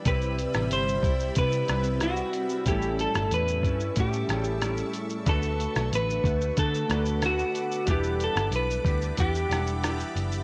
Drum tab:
HH |x-x-x-x-x-x-x-x-|x-x-x-x-x-x-x-x-|x-x-x-x-x-x-x-x-|x-x-x-x-x-x-x-x-|
SH |xxxxxxxxxxxxxxxx|xxxxxxxxxxxxxxxx|xxxxxxxxxxxxxxxx|xxxxxxxxxxxxxxxx|
SD |---r------r-r---|---r------r-r---|---r------r-r---|---r------r-r---|
BD |o-----o-o-------|o-----o-o-------|o-----o-o-------|o-----o-o-------|